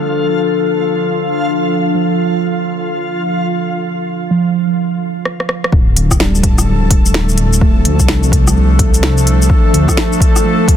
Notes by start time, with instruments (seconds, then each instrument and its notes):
Already playing: synth keys D3 F3, ambient pad F3 D4 A4, synth texture F4 F5
1.95 synth keys F3
4.31 synth keys F3
5.25 cross-stick
5.40 cross-stick
5.49 cross-stick
5.64 cross-stick
5.70 detuned saw bass D1, ambient pad F3 A3 D4 A4, synth texture A4 A5, kick
5.97 open hi-hat
6.11 kick, cross-stick, shaker
6.20 synth keys G3, snare
6.35 shaker
6.43 kick, open hi-hat
6.58 cross-stick, shaker
6.68 detuned saw bass D1
6.91 kick, open hi-hat
7.06 shaker
7.14 snare
7.29 shaker
7.38 detuned saw bass D1, open hi-hat
7.53 shaker
7.61 detuned saw bass D1, synth keys A3, kick
7.85 detuned saw bass D2, open hi-hat
8.00 detuned saw bass C2, kick, shaker
8.08 snare
8.23 shaker
8.32 kick, open hi-hat
8.48 cross-stick, shaker
8.79 kick, open hi-hat
8.94 open hi-hat, shaker
9.03 snare
9.18 shaker
9.27 open hi-hat
9.42 shaker
9.50 kick
9.73 detuned saw bass D2, open hi-hat
9.88 kick, cross-stick, shaker
9.97 snare
10.13 shaker
10.20 kick, open hi-hat
10.36 cross-stick, shaker
10.45 synth keys F3
10.68 kick, open hi-hat